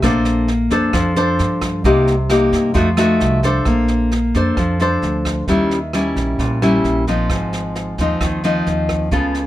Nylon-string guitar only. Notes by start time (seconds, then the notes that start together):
0.03 A#3 D4 A4 C5
0.71 D4 A4 C5
0.93 F3
1.16 D4 A4 C5
1.85 C3 A#3 D#4 G4
2.30 A#3 D#4 G4
2.74 F3 A3 D#4 F#4
2.97 A3 D#4 F#4
3.44 D4 A4 C5
3.67 A#3
4.35 D4 A4 C5
4.59 F3
4.81 D4 A4 C5
5.48 D#3 G3 C#4 E4
5.94 G3 C#4 E4
6.40 A#2
6.62 G3 C#4 E4
7.08 F3 C4 D#4
7.31 G#2
8.00 F3 C4 D#4
8.22 D#3
8.44 F3 C4 D#4
9.12 C#3 B3 F4 A4